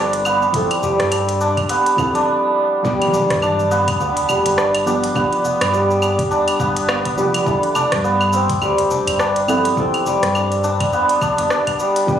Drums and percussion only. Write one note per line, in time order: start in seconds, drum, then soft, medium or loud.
0.13 closed hi-hat soft
0.13 cabasa soft
0.25 cabasa medium
0.25 claves medium
0.42 cabasa soft
0.54 kick loud
0.54 closed hi-hat medium
0.54 cabasa soft
0.71 closed hi-hat soft
0.71 claves medium
0.83 udu medium
0.83 cabasa medium
0.99 cross-stick medium
0.99 closed hi-hat soft
0.99 udu medium
0.99 cabasa soft
1.12 closed hi-hat medium
1.12 cabasa soft
1.12 claves medium
1.29 closed hi-hat soft
1.29 cabasa soft
1.41 cabasa medium
1.57 kick medium
1.57 closed hi-hat soft
1.57 cabasa soft
1.57 claves medium
1.69 closed hi-hat medium
1.69 cabasa soft
1.86 closed hi-hat soft
1.86 cabasa soft
1.98 kick loud
1.98 udu medium
1.98 cabasa medium
1.98 claves medium
2.15 closed hi-hat soft
2.15 cabasa soft
2.85 kick loud
2.85 cabasa soft
3.02 closed hi-hat soft
3.02 claves medium
3.14 cabasa medium
3.30 kick loud
3.30 cross-stick medium
3.30 closed hi-hat medium
3.30 cabasa soft
3.42 cabasa soft
3.42 claves medium
3.59 cabasa soft
3.71 cabasa medium
3.88 kick loud
3.88 closed hi-hat medium
3.88 cabasa soft
3.88 claves medium
4.00 cabasa soft
4.17 closed hi-hat soft
4.17 udu medium
4.17 cabasa soft
4.29 cabasa medium
4.29 claves medium
4.45 closed hi-hat medium
4.45 udu medium
4.45 cabasa soft
4.58 cross-stick medium
4.58 cabasa soft
4.75 closed hi-hat soft
4.75 claves medium
4.87 cabasa medium
5.04 closed hi-hat medium
5.04 cabasa soft
5.15 kick loud
5.15 cabasa soft
5.15 claves medium
5.33 closed hi-hat soft
5.45 cabasa medium
5.61 cross-stick medium
5.61 closed hi-hat medium
5.61 cabasa soft
5.61 claves medium
5.74 cabasa soft
5.91 cabasa soft
6.02 cabasa medium
6.02 claves medium
6.19 kick loud
6.19 closed hi-hat medium
6.19 cabasa soft
6.31 udu medium
6.31 cabasa soft
6.48 closed hi-hat soft
6.48 cabasa soft
6.48 claves medium
6.60 kick loud
6.60 cabasa medium
6.77 closed hi-hat medium
6.77 udu medium
6.77 cabasa soft
6.89 cross-stick medium
6.89 cabasa soft
6.89 claves medium
7.05 kick medium
7.05 closed hi-hat soft
7.18 cabasa medium
7.34 closed hi-hat medium
7.34 cabasa soft
7.34 claves medium
7.46 kick loud
7.46 cabasa soft
7.63 closed hi-hat soft
7.75 cabasa medium
7.75 claves medium
7.92 kick loud
7.92 cross-stick medium
7.92 closed hi-hat medium
7.92 cabasa soft
8.04 cabasa soft
8.21 cabasa soft
8.21 claves medium
8.33 cabasa medium
8.50 kick loud
8.50 closed hi-hat soft
8.50 cabasa soft
8.62 cabasa soft
8.62 claves medium
8.78 closed hi-hat soft
8.78 udu loud
8.78 cabasa soft
8.91 cabasa medium
9.07 closed hi-hat medium
9.07 udu loud
9.07 cabasa soft
9.07 claves medium
9.19 cross-stick medium
9.19 cabasa soft
9.36 closed hi-hat soft
9.48 cabasa medium
9.48 claves medium
9.65 closed hi-hat medium
9.65 cabasa soft
9.77 kick loud
9.77 cabasa soft
9.94 closed hi-hat soft
9.94 cabasa soft
9.94 claves medium
10.06 cabasa medium
10.23 cross-stick medium
10.23 closed hi-hat soft
10.23 cabasa soft
10.35 cabasa soft
10.35 claves medium
10.52 closed hi-hat soft
10.52 cabasa soft
10.64 cabasa medium
10.80 kick loud
10.80 closed hi-hat medium
10.80 cabasa soft
10.80 claves medium
10.92 udu medium
10.92 cabasa soft
11.09 closed hi-hat soft
11.09 cabasa soft
11.21 kick loud
11.21 cabasa medium
11.21 claves medium
11.38 closed hi-hat medium
11.38 udu medium
11.38 cabasa soft
11.50 cross-stick medium
11.50 cabasa soft
11.67 kick medium
11.67 closed hi-hat soft
11.67 cabasa soft
11.67 claves medium
11.79 cabasa medium
11.96 closed hi-hat soft
11.96 cabasa soft
12.08 kick loud
12.08 cabasa soft